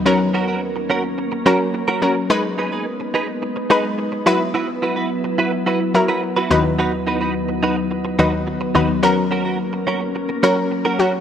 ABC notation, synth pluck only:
X:1
M:4/4
L:1/16
Q:1/4=107
K:F#mix
V:1 name="Synth pluck"
[F,CA]4 z6 [F,CA]2 z2 [F,CA] z | [G,DB]4 z6 [G,DB]2 z2 [F,EB]2- | [F,EB]4 z6 [F,EA]2 z2 [D,,F,DB]2- | [D,,F,DB]4 z6 [D,,F,DB]2 z2 [D,,F,DB] z |
[F,CA]4 z6 [F,CA]2 z2 [F,CF] z |]